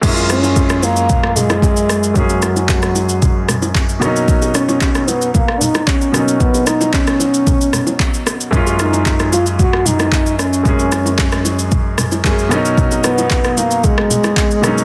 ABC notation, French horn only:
X:1
M:4/4
L:1/8
Q:1/4=113
K:F#
V:1 name="French horn"
z C2 A,2 G,3 | F,6 z2 | z C2 B, A, D C2 | B, D C4- C z |
z D2 E F D2 C- | C4- C z3 | z B,2 A, G,4 |]